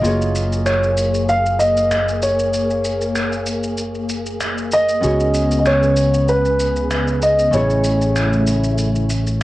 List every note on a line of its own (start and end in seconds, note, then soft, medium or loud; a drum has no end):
0.00 4.99 A#3 medium
0.00 5.00 F4 medium
0.00 4.99 G#4 medium
0.00 0.69 D#5 medium
0.04 5.01 F#1 medium
0.04 5.01 F#4 medium
0.04 5.01 G#4 medium
0.04 5.02 C#5 medium
0.04 shaker soft
0.22 shaker soft
0.36 shaker medium
0.53 shaker soft
0.66 1.30 C#5 medium
0.66 finger snap medium
0.66 shaker soft
0.84 shaker soft
0.97 shaker medium
1.14 shaker soft
1.29 1.61 F5 medium
1.29 shaker soft
1.46 shaker soft
1.59 2.24 D#5 medium
1.59 shaker medium
1.77 shaker soft
1.91 finger snap medium
1.91 shaker soft
2.08 shaker soft
2.22 4.06 C#5 medium
2.22 shaker medium
2.39 shaker soft
2.54 shaker soft
2.70 shaker soft
2.85 shaker medium
3.01 shaker soft
3.16 finger snap medium
3.16 shaker soft
3.32 shaker soft
3.46 shaker medium
3.63 shaker soft
3.78 shaker soft
3.95 shaker soft
4.09 shaker medium
4.26 shaker soft
4.40 finger snap medium
4.40 shaker soft
4.58 shaker soft
4.72 5.57 D#5 loud
4.72 shaker medium
4.88 shaker soft
5.01 7.51 C#2 medium
5.01 9.43 C#3 medium
5.01 7.49 B3 medium
5.01 7.51 B3 medium
5.01 7.49 C#4 medium
5.01 7.50 F#4 medium
5.01 9.43 G#4 medium
5.01 shaker soft
5.05 7.51 G#4 medium
5.05 7.51 C#5 medium
5.20 shaker soft
5.34 shaker medium
5.51 shaker soft
5.59 5.66 D#5 medium
5.66 6.31 C#5 medium
5.66 finger snap medium
5.66 shaker soft
5.83 shaker soft
5.97 shaker medium
6.14 shaker soft
6.28 7.25 B4 medium
6.28 shaker soft
6.45 shaker soft
6.60 shaker medium
6.76 shaker soft
6.91 finger snap medium
6.91 shaker soft
7.08 shaker soft
7.22 7.55 D#5 medium
7.22 shaker medium
7.39 shaker soft
7.51 9.43 A1 medium
7.51 9.43 A3 medium
7.51 9.43 C#4 medium
7.51 9.43 E4 medium
7.51 9.43 C#5 medium
7.51 shaker soft
7.55 9.43 G#4 medium
7.55 9.43 C#5 medium
7.70 shaker soft
7.84 shaker medium
8.01 shaker soft
8.16 finger snap medium
8.16 shaker soft
8.33 shaker soft
8.47 shaker medium
8.64 shaker soft
8.78 shaker soft
8.96 shaker soft
9.10 shaker medium
9.27 shaker soft